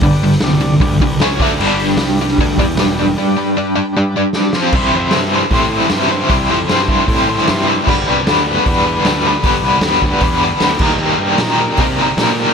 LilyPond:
<<
  \new Staff \with { instrumentName = "Transistor combo organ" } { \time 4/4 \key c \major \tempo 4 = 153 << { r1 | r1 | r2. \tuplet 3/2 { d''4 a''8 } | r1 |
r1 | r1 | r2 r8 b''8 g''8 ees''8 | r1 | } \\ { <d' g' b'>4 <d' g' d''>4 <d' g' b'>8 <d' g' b'>8 <cis' gis' cis''>8 <d' a' d''>8 | <d' g' b'>4 <d' g' b'>4 <d' g' b'>8 <d' g' b'>8 <d' g' b'>4 | <d' g' b'>4 <d' g' b'>4 <d' g' b'>8 <d' g' b'>8 <d' g' b'>8 <c' f' c''>8 | <e' g' c''>4 <e' g' c''>4 <e' g' c''>4 <e' g' c''>4 |
<e' g' c''>4 <e' g' c''>4 <e' g' c''>4 <e' g' c''>4 | <d' g' b'>4 <d' g' b'>4 <d' g' b'>4 <d' g' a'>4 | <d' g' b'>4 <d' g' b'>4 <d' g' b'>4 <d' g' b'>8 <ees' g' bes'>8~ | <ees' g' bes'>8 r8 <ees' g' bes'>4 <ees' g' c''>4 <ees' g' a'>4 | } >> }
  \new Staff \with { instrumentName = "Overdriven electric guitar" } { \time 4/4 \key c \major <g, d>8 <g, d>8 <g, d>8 <g, d>8 <g, d>8 <g, d>8 <cis gis cis'>8 <d a d'>8 | <g b d'>8 <g d'>8 <g d'>8 <g d'>8 <g d'>8 <g d'>8 <g d'>8 <g d'>8 | <g d'>8 <g d'>8 <g d'>8 <g d'>8 <g d'>8 <g d'>8 <g d'>8 <f c' f'>8 | <c e g c' e' c''>8 <c e g c' e' c''>8 <c e g c' e' c''>8 <c e g c' e' c''>8 <c e g c' e' c''>8 <c e g c' e' c''>8 <c e g c' e' c''>8 <c e g c' e' c''>8 |
<c e g c' e' c''>8 <c e g c' e' c''>8 <c e g c' e' c''>8 <c e g c' e' c''>8 <c e g c' e' c''>8 <c e g c' e' c''>8 <c e g c' e' c''>8 <c e g c' e' c''>8 | <g b d' b'>8 <g b d' b'>8 <g b d' b'>8 <g b d' b'>8 <g b d' b'>8 <g b d' b'>8 <g b d' b'>8 <g b d' b'>8 | <g b d' b'>8 <g b d' b'>8 <g b d' b'>8 <g b d' b'>8 <g b d' b'>8 <g b d' b'>8 <g b d' b'>8 <ees g bes g' bes'>8 | <ees g bes g' bes'>8 <ees g bes g' bes'>8 <ees g bes g' bes'>8 <ees g bes g' bes'>8 <ees g bes g' bes'>8 <ees g bes g' bes'>8 <ees g bes g' bes'>8 <ees g bes g' bes'>8 | }
  \new Staff \with { instrumentName = "Picked electric bass" } { \clef bass \time 4/4 \key c \major g,,4 c,4 d,8 c,8 cis,8 d,8 | g,,4 c,4 d,8 e,8 e,,4 | r1 | c,8 f,8 g,4 a,4 g,4 |
c,8 f,8 g,4 a,4 g,4 | g,,8 c,8 d,4 e,4 d,4 | g,,8 c,8 d,4 e,4 d,8 ees,8 | ees,8 g,8 bes,4 c4 bes,4 | }
  \new DrumStaff \with { instrumentName = "Drums" } \drummode { \time 4/4 <hho bd>8 hho16 sn16 <hho sn>8 hho8 <hho bd>8 <hho bd>8 <hho sn>8 <hho bd>8 | cymc8 hho16 sn16 <hho sn>8 hho16 sn16 <hho bd>8 <hho bd>8 <hho sn>8 hho8 | r4 r4 r4 sn8 sn8 | <cymc bd>4 <hho sn>4 <hho bd>8. sn16 <hho sn>4 |
<hho bd>4 <hho sn>8 bd8 <hho bd>8. sn16 <hho sn>4 | <cymc bd>4 <hho sn>4 <hho bd>4 <hho sn>4 | <hho bd>4 <hho sn>8 bd8 <hho bd>4 <hho sn>8 <cymc bd>8 | r4 <hho sn>4 <hho bd>4 <hho sn>4 | }
>>